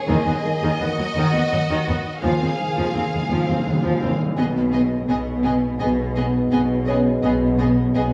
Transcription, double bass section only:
0.09 0.16 D#2 medium
0.80 0.87 D#2 medium
1.16 1.23 D#2 medium
1.51 1.58 D#2 soft
1.87 1.94 D#2 medium
2.23 2.30 D#2 medium
2.95 3.02 D#2 medium
3.30 3.37 D#2 medium
3.66 3.73 D#2 soft
4.02 4.09 D#2 soft
4.38 5.00 B1 medium
5.09 5.72 B1 medium
5.80 6.43 B1 medium
6.52 7.15 B1 medium
7.23 7.86 B1 medium
7.94 8.13 B1 medium

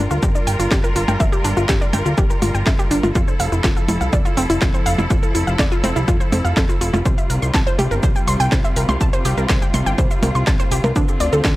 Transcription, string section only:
0.00 3.11 G3 medium
0.00 3.11 F4 medium
0.00 3.11 A#4 medium
3.15 7.02 F3 medium
3.15 7.02 E4 medium
3.15 7.02 A4 medium
7.06 10.92 C3 medium
7.06 10.92 G3 medium
7.06 11.56 F4 medium
10.96 11.56 D3 medium
10.96 11.56 C4 medium

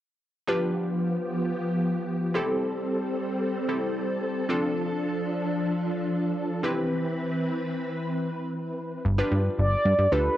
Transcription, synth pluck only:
0.47 2.31 D4 medium
0.47 2.31 F4 medium
0.47 2.31 G4 medium
0.47 2.32 B4 medium
2.34 3.66 C4 medium
2.34 3.66 E4 medium
2.34 3.66 G4 medium
2.34 3.67 A4 medium
3.69 4.48 C4 medium
3.69 4.49 E4 medium
3.69 4.49 G4 soft
3.69 4.49 A4 medium
4.49 6.59 C4 medium
4.49 6.60 D4 medium
4.49 6.60 F4 medium
4.49 6.60 A4 medium
6.63 8.74 C4 medium
6.63 8.74 E4 medium
6.63 8.74 G4 medium
6.63 8.74 B4 medium
9.18 9.78 D4 medium
9.18 9.78 F4 medium
9.18 9.78 G4 medium
9.18 9.78 B4 loud
10.12 10.29 D4 medium
10.12 10.29 F4 medium
10.12 10.29 G4 medium
10.12 10.29 A4 medium

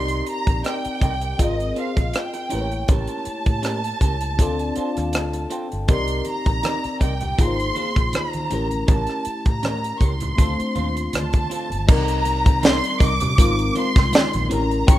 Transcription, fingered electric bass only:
0.00 0.21 C2 medium
0.48 0.62 A#1 medium
0.86 muted fingered electric bass stroke soft
1.02 1.33 C2 medium
1.40 1.70 G#1 medium
1.97 2.11 A#1 medium
2.53 2.83 A1 medium
2.89 3.06 A1 medium
3.27 muted fingered electric bass stroke soft
3.47 3.92 A2 medium
4.01 4.40 C#2 medium
4.40 4.70 D2 medium
4.77 muted fingered electric bass stroke soft
4.98 5.15 D#2 medium
5.15 5.45 D2 medium
5.73 5.87 G1 medium
5.89 6.20 C2 medium
6.47 6.61 A#1 medium
6.85 muted fingered electric bass stroke soft
7.01 7.32 C2 medium
7.39 7.70 G#1 medium
7.97 8.11 A#1 medium
8.52 8.82 A1 medium
8.89 9.05 A1 medium
9.27 muted fingered electric bass stroke soft
9.46 9.92 A2 medium
10.01 10.32 C#2 medium
10.39 10.55 D2 medium
10.60 muted fingered electric bass stroke soft
10.77 11.07 D#2 medium
11.14 11.45 D2 medium
11.72 11.86 G1 medium
11.89 12.80 C2 medium
13.01 13.18 C2 medium
13.22 13.36 C3 medium
13.39 13.69 G#1 loud
13.96 14.10 C2 medium
14.35 14.48 A#1 medium
14.52 14.82 A1 loud
14.88 14.99 A1 medium

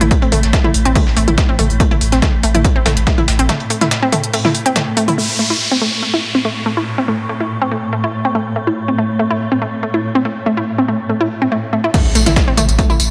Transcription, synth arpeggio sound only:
0.01 0.03 E4 loud
0.22 0.28 C4 loud
0.32 0.36 A3 loud
0.53 0.58 A3 medium
0.64 0.67 E4 loud
0.85 0.91 C4 loud
0.95 1.00 A3 loud
1.17 1.21 A3 loud
1.28 1.30 E4 loud
1.49 1.55 C4 loud
1.59 1.63 A3 loud
1.80 1.84 A3 loud
1.91 1.94 E4 loud
2.12 2.18 C4 loud
2.22 2.27 A3 loud
2.43 2.48 A3 loud
2.55 2.57 E4 loud
2.76 2.82 C4 loud
2.86 2.90 A3 loud
3.07 3.11 A3 loud
3.18 3.20 E4 loud
3.39 3.45 C4 loud
3.49 3.53 A3 loud
3.70 3.75 A3 loud
3.81 3.84 E4 loud
4.02 4.08 C4 loud
4.12 4.17 A3 loud
4.34 4.38 A3 loud
4.45 4.47 E4 loud
4.66 4.72 C4 loud
4.76 4.80 A3 loud
4.97 5.01 A3 loud
5.08 5.10 E4 loud
5.18 5.22 A3 loud
5.39 5.44 A3 loud
5.50 5.53 E4 loud
5.71 5.77 C4 loud
5.81 5.86 A3 loud
6.03 6.07 A3 loud
6.14 6.16 E4 loud
6.35 6.41 C4 loud
6.45 6.49 A3 loud
6.66 6.70 A3 loud
6.77 6.79 E4 loud
6.98 7.04 C4 loud
7.08 7.13 A3 loud
7.29 7.34 A3 loud
7.40 7.43 E4 loud
7.62 7.68 C4 loud
7.71 7.76 A3 loud
7.93 7.97 A3 loud
8.04 8.06 E4 loud
8.25 8.31 C4 loud
8.35 8.39 A3 loud
8.56 8.60 A3 loud
8.67 8.70 E4 loud
8.88 8.94 C4 loud
8.98 9.03 A3 loud
9.19 9.24 A3 loud
9.30 9.33 E4 loud
9.52 9.58 C4 loud
9.62 9.66 A3 loud
9.83 9.87 A3 loud
9.94 9.96 E4 loud
10.15 10.21 C4 loud
10.25 10.30 A3 loud
10.46 10.51 A3 loud
10.57 10.60 E4 loud
10.78 10.84 C4 loud
10.88 10.93 A3 loud
11.09 11.14 A3 medium
11.21 11.23 E4 loud
11.42 11.48 C4 loud
11.52 11.56 A3 loud
11.73 11.77 A3 loud
11.84 11.86 E4 loud
11.94 11.99 A3 loud
12.15 12.20 A3 loud
12.26 12.29 E4 loud
12.48 12.53 C4 loud
12.57 12.62 A3 loud
12.79 12.83 A3 loud
12.90 12.92 E4 loud

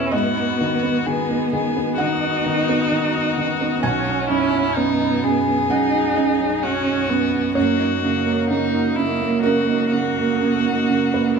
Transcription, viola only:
0.00 0.15 C#4 soft
0.13 1.05 B3 medium
1.06 2.01 B3 medium
2.00 3.83 D#4 medium
3.83 4.78 C#4 medium
4.76 5.72 B3 medium
5.71 6.64 D#4 medium
6.63 7.11 C#4 medium
7.09 7.56 B3 medium
7.56 8.02 A#3 medium
8.04 11.39 A#3 medium

